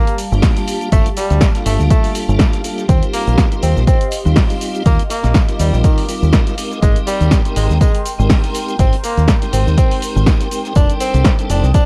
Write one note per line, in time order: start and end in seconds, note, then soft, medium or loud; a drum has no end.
0.00 2.85 G3 medium
0.00 0.17 A#3 loud
0.00 6.54 G4 medium
0.00 6.54 F5 medium
0.00 2.85 A5 medium
0.07 closed hi-hat medium
0.07 closed hi-hat soft
0.07 shaker soft
0.18 open hi-hat loud
0.18 tambourine medium
0.18 shaker medium
0.31 0.41 G1 loud
0.31 0.89 G3 medium
0.31 0.90 A#3 medium
0.31 0.90 D4 medium
0.31 0.90 F4 medium
0.31 0.90 G4 loud
0.31 shaker soft
0.42 kick loud
0.42 snare loud
0.42 closed hi-hat medium
0.42 open hi-hat medium
0.42 shaker soft
0.57 snare medium
0.57 closed hi-hat medium
0.57 shaker soft
0.68 open hi-hat loud
0.68 tambourine medium
0.68 shaker medium
0.81 closed hi-hat soft
0.81 shaker soft
0.92 1.03 G1 loud
0.92 1.09 G3 loud
0.92 1.08 A3 loud
0.92 1.09 A#3 medium
0.92 1.09 D4 medium
0.92 1.10 F4 medium
0.92 1.10 C5 loud
0.92 kick loud
0.92 closed hi-hat medium
0.92 tambourine medium
0.92 shaker soft
1.06 closed hi-hat medium
1.06 closed hi-hat soft
1.06 shaker soft
1.16 1.48 G3 loud
1.16 snare medium
1.16 open hi-hat loud
1.16 tambourine medium
1.16 shaker medium
1.30 1.39 D2 medium
1.30 snare soft
1.30 closed hi-hat soft
1.30 shaker soft
1.41 kick loud
1.41 snare loud
1.41 closed hi-hat medium
1.41 tambourine medium
1.41 shaker soft
1.54 2.61 G3 medium
1.54 2.62 A#3 medium
1.54 2.62 D4 medium
1.54 2.62 F4 medium
1.54 2.62 A4 medium
1.54 snare soft
1.54 closed hi-hat medium
1.54 shaker soft
1.66 1.77 G1 loud
1.66 1.82 A3 medium
1.66 open hi-hat loud
1.66 tambourine medium
1.66 shaker medium
1.79 1.88 D2 medium
1.79 snare soft
1.79 shaker soft
1.90 2.13 A3 medium
1.90 kick loud
1.90 closed hi-hat medium
1.90 tambourine medium
1.90 shaker soft
2.04 open hi-hat medium
2.04 shaker soft
2.15 open hi-hat loud
2.15 tambourine medium
2.15 shaker medium
2.29 2.37 G1 loud
2.29 shaker soft
2.39 kick loud
2.39 snare loud
2.39 closed hi-hat medium
2.39 tambourine loud
2.39 shaker soft
2.53 snare medium
2.53 closed hi-hat medium
2.53 shaker soft
2.64 2.86 G3 medium
2.64 2.86 A#3 medium
2.64 2.86 D4 medium
2.64 2.86 F4 medium
2.64 2.87 A4 loud
2.64 open hi-hat loud
2.64 tambourine medium
2.64 shaker medium
2.78 snare soft
2.78 closed hi-hat soft
2.78 shaker soft
2.88 3.00 D#2 loud
2.88 3.48 G3 medium
2.88 3.48 C4 medium
2.88 3.05 C4 loud
2.88 3.49 D#4 medium
2.88 3.49 F4 medium
2.88 3.49 A#4 medium
2.88 6.54 D#5 medium
2.88 4.84 C6 medium
2.88 kick loud
2.88 closed hi-hat medium
2.88 tambourine medium
2.88 shaker soft
3.03 closed hi-hat medium
3.03 shaker soft
3.13 3.44 A#3 loud
3.13 snare medium
3.13 open hi-hat loud
3.13 tambourine medium
3.13 shaker medium
3.27 3.36 A#1 loud
3.27 closed hi-hat soft
3.27 shaker soft
3.38 kick loud
3.38 snare loud
3.38 closed hi-hat medium
3.38 tambourine medium
3.38 shaker soft
3.51 3.85 G3 medium
3.51 3.85 C4 medium
3.51 3.85 D#4 medium
3.51 3.85 F4 medium
3.51 3.85 A#4 medium
3.51 closed hi-hat soft
3.51 shaker soft
3.62 3.73 D#2 medium
3.62 3.79 C4 medium
3.62 snare medium
3.62 open hi-hat loud
3.62 tambourine medium
3.62 shaker medium
3.77 3.85 A#1 medium
3.77 snare soft
3.77 shaker soft
3.87 3.99 G3 medium
3.87 3.99 C4 medium
3.87 4.10 C4 medium
3.87 3.99 D#4 medium
3.87 3.99 F4 medium
3.87 3.99 A#4 medium
3.87 kick loud
3.87 closed hi-hat medium
3.87 tambourine medium
3.87 shaker soft
4.01 closed hi-hat soft
4.01 closed hi-hat medium
4.01 shaker soft
4.11 open hi-hat loud
4.11 tambourine medium
4.11 shaker medium
4.25 4.34 D#2 loud
4.25 4.83 G3 medium
4.25 4.83 C4 medium
4.25 4.83 D#4 medium
4.25 4.83 F4 medium
4.25 4.83 G4 loud
4.25 shaker soft
4.36 kick loud
4.36 snare loud
4.36 closed hi-hat medium
4.36 open hi-hat medium
4.36 shaker soft
4.50 snare medium
4.50 closed hi-hat medium
4.50 shaker soft
4.61 open hi-hat loud
4.61 tambourine medium
4.61 shaker medium
4.75 closed hi-hat soft
4.75 shaker soft
4.85 4.96 D#2 loud
4.85 5.03 G3 loud
4.85 5.02 A#3 loud
4.85 5.03 C4 medium
4.85 5.03 D#4 medium
4.85 5.03 F4 medium
4.85 5.03 D#5 loud
4.85 6.56 D6 medium
4.85 kick loud
4.85 closed hi-hat medium
4.85 tambourine medium
4.85 shaker soft
4.99 closed hi-hat medium
4.99 closed hi-hat soft
4.99 shaker soft
5.10 5.41 A#3 loud
5.10 snare medium
5.10 open hi-hat loud
5.10 tambourine medium
5.10 shaker medium
5.24 5.33 A#1 medium
5.24 snare soft
5.24 closed hi-hat soft
5.24 shaker soft
5.34 kick loud
5.34 snare loud
5.34 closed hi-hat medium
5.34 tambourine medium
5.34 shaker soft
5.48 6.06 G3 medium
5.48 6.06 C4 medium
5.48 6.07 D#4 medium
5.48 6.07 F4 medium
5.48 6.07 A#4 medium
5.48 snare soft
5.48 closed hi-hat medium
5.48 shaker soft
5.59 5.70 D#2 medium
5.59 5.76 G3 medium
5.59 open hi-hat loud
5.59 tambourine medium
5.59 shaker medium
5.73 5.82 A#1 medium
5.73 snare medium
5.73 shaker soft
5.84 6.07 D#3 medium
5.84 kick loud
5.84 closed hi-hat medium
5.84 tambourine medium
5.84 shaker soft
5.98 open hi-hat medium
5.98 shaker soft
6.08 6.55 G3 medium
6.08 6.55 C4 medium
6.08 6.55 D#4 medium
6.08 6.55 F4 medium
6.08 6.55 A#4 medium
6.08 open hi-hat loud
6.08 tambourine medium
6.08 shaker medium
6.22 6.31 D#2 loud
6.22 shaker soft
6.33 kick loud
6.33 snare loud
6.33 closed hi-hat medium
6.33 tambourine medium
6.33 shaker soft
6.47 snare medium
6.47 closed hi-hat medium
6.47 shaker soft
6.58 6.80 G#3 medium
6.58 6.80 C4 medium
6.58 6.80 D#4 medium
6.58 6.80 G4 medium
6.58 10.72 A#4 medium
6.58 6.80 A#4 loud
6.58 11.86 G5 medium
6.58 10.72 C6 medium
6.58 open hi-hat loud
6.58 tambourine medium
6.58 shaker medium
6.71 snare soft
6.71 closed hi-hat soft
6.71 shaker soft
6.82 6.93 G#1 loud
6.82 7.42 G3 medium
6.82 6.99 G#3 loud
6.82 7.42 C4 medium
6.82 7.42 D#4 medium
6.82 7.42 G4 medium
6.82 7.42 A#4 medium
6.82 kick loud
6.82 closed hi-hat medium
6.82 tambourine medium
6.82 shaker soft
6.96 closed hi-hat medium
6.96 shaker soft
7.07 7.38 G3 loud
7.07 snare soft
7.07 open hi-hat loud
7.07 tambourine medium
7.07 shaker medium
7.20 7.29 D#2 medium
7.20 closed hi-hat soft
7.20 shaker soft
7.31 kick loud
7.31 snare loud
7.31 closed hi-hat medium
7.31 tambourine medium
7.31 shaker soft
7.45 7.78 G#3 medium
7.45 7.78 C4 medium
7.45 7.78 D#4 medium
7.45 7.78 G4 medium
7.45 7.78 A#4 medium
7.45 closed hi-hat medium
7.45 shaker soft
7.56 7.67 G#1 loud
7.56 7.72 G#3 medium
7.56 snare soft
7.56 open hi-hat loud
7.56 tambourine medium
7.56 shaker medium
7.70 7.78 D#2 medium
7.70 snare soft
7.70 shaker soft
7.81 7.92 G#3 medium
7.81 8.04 G#3 medium
7.81 7.92 C4 medium
7.81 7.92 D#4 medium
7.81 7.92 G4 medium
7.81 7.92 A#4 medium
7.81 kick loud
7.81 closed hi-hat medium
7.81 tambourine loud
7.81 shaker soft
7.95 closed hi-hat medium
7.95 closed hi-hat soft
7.95 shaker soft
8.05 open hi-hat loud
8.05 tambourine medium
8.05 shaker medium
8.18 8.28 G#1 loud
8.18 8.76 G#3 medium
8.18 8.76 C4 medium
8.18 8.77 D#4 medium
8.18 8.77 G4 medium
8.18 8.77 A#4 loud
8.18 shaker soft
8.30 kick loud
8.30 snare loud
8.30 closed hi-hat medium
8.30 open hi-hat medium
8.30 shaker soft
8.44 snare soft
8.44 closed hi-hat medium
8.44 shaker soft
8.54 open hi-hat loud
8.54 tambourine medium
8.54 shaker medium
8.68 closed hi-hat soft
8.68 shaker soft
8.79 8.90 G#1 loud
8.79 8.96 G#3 loud
8.79 8.96 C4 medium
8.79 8.96 C4 loud
8.79 8.96 D#4 medium
8.79 8.96 G4 medium
8.79 8.97 D#5 loud
8.79 kick loud
8.79 closed hi-hat medium
8.79 tambourine medium
8.79 shaker soft
8.93 closed hi-hat medium
8.93 closed hi-hat soft
8.93 shaker soft
9.03 9.35 A#3 loud
9.03 snare medium
9.03 open hi-hat loud
9.03 tambourine medium
9.03 shaker medium
9.17 9.26 D#2 medium
9.17 snare soft
9.17 closed hi-hat soft
9.17 shaker soft
9.28 kick loud
9.28 snare loud
9.28 closed hi-hat medium
9.28 tambourine medium
9.28 shaker soft
9.41 10.48 G#3 medium
9.41 10.49 C4 medium
9.41 10.49 D#4 medium
9.41 10.49 G4 medium
9.41 10.49 A#4 medium
9.41 snare soft
9.41 closed hi-hat medium
9.41 shaker soft
9.53 9.64 G#1 medium
9.53 9.69 C4 medium
9.53 open hi-hat loud
9.53 tambourine medium
9.53 shaker medium
9.67 9.75 D#2 medium
9.67 snare medium
9.67 shaker soft
9.77 10.00 C4 loud
9.77 kick loud
9.77 closed hi-hat medium
9.77 tambourine medium
9.77 shaker soft
9.91 open hi-hat medium
9.91 shaker soft
10.02 open hi-hat loud
10.02 tambourine medium
10.02 shaker medium
10.16 10.24 G#1 loud
10.16 shaker soft
10.26 kick loud
10.26 snare loud
10.26 closed hi-hat medium
10.26 tambourine medium
10.26 shaker soft
10.40 snare medium
10.40 closed hi-hat medium
10.40 shaker soft
10.51 10.73 G#3 medium
10.51 10.73 C4 medium
10.51 10.73 D#4 medium
10.51 10.73 G4 medium
10.51 10.73 A#4 loud
10.51 open hi-hat loud
10.51 tambourine medium
10.51 shaker medium
10.65 snare soft
10.65 closed hi-hat soft
10.65 shaker soft
10.75 10.87 F1 loud
10.75 11.35 G3 medium
10.75 11.35 C4 medium
10.75 10.92 D4 loud
10.75 11.36 D4 medium
10.75 11.36 D#4 medium
10.75 11.36 A4 medium
10.75 11.86 C5 medium
10.75 11.86 A5 medium
10.75 11.86 D#6 medium
10.75 kick loud
10.75 closed hi-hat medium
10.75 tambourine loud
10.75 shaker soft
10.90 closed hi-hat medium
10.90 shaker soft
11.00 11.31 C4 loud
11.00 snare soft
11.00 open hi-hat loud
11.00 tambourine medium
11.00 shaker medium
11.14 11.23 C2 loud
11.14 closed hi-hat soft
11.14 shaker soft
11.25 kick loud
11.25 snare loud
11.25 closed hi-hat medium
11.25 tambourine medium
11.25 shaker soft
11.38 11.72 G3 medium
11.38 11.72 C4 medium
11.38 11.72 D4 medium
11.38 11.72 D#4 medium
11.38 11.72 A4 medium
11.38 closed hi-hat medium
11.38 shaker soft
11.50 11.60 F1 loud
11.50 11.66 D4 medium
11.50 snare soft
11.50 open hi-hat loud
11.50 tambourine medium
11.50 shaker medium
11.63 11.72 C2 medium
11.63 snare soft
11.63 shaker soft
11.74 11.85 G3 medium
11.74 11.86 C4 medium
11.74 11.86 D4 loud
11.74 11.86 D4 medium
11.74 11.86 D#4 medium
11.74 11.86 A4 medium
11.74 kick loud
11.74 closed hi-hat medium
11.74 tambourine medium
11.74 shaker soft